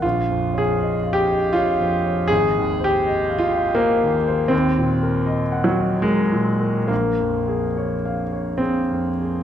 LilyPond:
\new Staff \with { instrumentName = "Grand piano" } { \time 3/4 \key bes \dorian \tempo 4 = 79 << { \tuplet 3/2 { bes,,8 f,8 des''8 ees''8 f''8 ees''8 des''8 f,8 des''8 } | \tuplet 3/2 { aes,,8 ees,8 c''8 ees''8 f''8 ees''8 c''8 ees,8 c''8 } | \tuplet 3/2 { ees,8 bes,8 bes'8 ees''8 ges''8 ees''8 bes'8 bes,8 bes'8 } | \tuplet 3/2 { bes,,8 f,8 aes'8 des''8 f''8 des''8 aes'8 f,8 aes'8 } | } \\ { f'8. aes'8. g'8 f'4 | aes'8. g'8. f'8 bes4 | c'4. ges8 aes4 | bes2 c'4 | } >> }